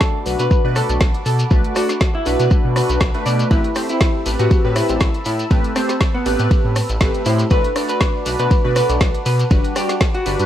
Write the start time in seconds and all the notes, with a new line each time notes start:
Already playing: A3 D4 F#4 A4 D5 F#5 A5 B5 D6
0.01 kick, snare, shekere
0.26 B1 A3 D4 F#4 B4, open hi-hat, shekere
0.39 B2 A3 D4 F#4 B4, closed hi-hat, shekere
0.51 kick, shekere
0.64 B2 A3 D4 F#4 B4
0.76 A4, cross-stick, open hi-hat, shekere
0.89 B1 A3 D4 F#4 D5, closed hi-hat, shekere
1.01 B1, kick, snare, shekere
1.14 closed hi-hat
1.26 B2 A4, open hi-hat, shekere
1.39 closed hi-hat, shekere
1.51 B1 A3 D4 F#4 B4, kick, shekere
1.64 closed hi-hat
1.75 A3 D4 F#4 D5, cross-stick, open hi-hat, shekere
1.89 snare, closed hi-hat, shekere
2.00 kick, snare, shekere
2.15 E4
2.26 B1 A3 D4 F#4 B4, open hi-hat, shekere
2.39 B2 A3 D4 F#4 B4, closed hi-hat, shekere
2.51 kick, shekere
2.64 B2
2.76 A3 D4 F#4 B4, cross-stick, open hi-hat, shekere
2.89 B1, closed hi-hat, shekere
3.00 B1, kick, snare, shekere
3.14 A3 D4 F#4 B4, closed hi-hat
3.26 B2 D5, open hi-hat, shekere
3.39 closed hi-hat, shekere
3.51 A1 A3 C4 E4 G4 B4 A5 E6, kick, ride, shekere
3.64 closed hi-hat
3.75 A3 C4 G4 C5, cross-stick, open hi-hat, ride, shekere
3.89 E4, closed hi-hat, shekere
4.01 kick, snare, ride, shekere
4.26 A1 A3 C4 G4 B4, open hi-hat, ride, shekere
4.39 A2 A3 C4 F#4 G4 B4, closed hi-hat, shekere
4.51 kick, ride, shekere
4.64 A2 A3 C4 G4 B4
4.76 E4, cross-stick, open hi-hat, ride, shekere
4.89 A1 A3 C4 G4 C5, closed hi-hat, shekere
5.00 A1, kick, snare, ride, shekere
5.14 closed hi-hat
5.25 A2 E4, open hi-hat, ride, shekere
5.39 closed hi-hat, shekere
5.51 A1 A3 C4 G4 B4, kick, ride, shekere
5.64 closed hi-hat
5.76 A3 C4 G4 C5, cross-stick, open hi-hat, ride, shekere
5.89 snare, closed hi-hat, shekere
6.01 kick, snare, ride, shekere
6.14 B3
6.26 A1 A3 C4 G4 B4, open hi-hat, ride, shekere
6.39 A2 A3 C4 G4 B4, closed hi-hat, shekere
6.51 kick, ride, shekere
6.64 A2
6.76 cross-stick, open hi-hat, ride, shekere
6.89 A1, closed hi-hat, shekere
7.01 A1 A3 C4 G4 B4, kick, snare, ride, shekere
7.14 closed hi-hat
7.25 A2 A3 C4 E4 G4 C5, open hi-hat, ride, shekere
7.39 closed hi-hat, shekere
7.50 B1 A3 D4 F#4 B4 F#5 A5 D6, kick, ride, shekere
7.64 closed hi-hat
7.76 A3 D4 F#4 D5, cross-stick, open hi-hat, ride, shekere
7.89 B4, closed hi-hat, shekere
8.01 kick, snare, ride, shekere
8.26 B1 A3 D4 F#4 B4, open hi-hat, ride, shekere
8.39 B2 A3 D4 F#4 B4, closed hi-hat, shekere
8.51 kick, ride, shekere
8.64 B2 A3 D4 F#4 B4
8.76 B4, cross-stick, open hi-hat, ride, shekere
8.89 B1 A3 D4 F#4 D5, closed hi-hat, shekere
9.01 B1, kick, snare, ride, shekere
9.14 closed hi-hat
9.26 B2 B4, open hi-hat, ride, shekere
9.39 closed hi-hat, shekere
9.51 G1 G3 D4 F#4 B4 A5 B5 D6, kick, ride, shekere
9.64 closed hi-hat
9.76 G3 D4 F#4 G4 D5, cross-stick, open hi-hat, ride, shekere
9.89 snare, closed hi-hat, shekere
10.01 kick, snare, ride, shekere
10.14 F#4, closed hi-hat
10.26 G1 G3 D4 F#4 B4, open hi-hat, ride, shekere
10.39 G2 G3 D4 F#4 B4, closed hi-hat, shekere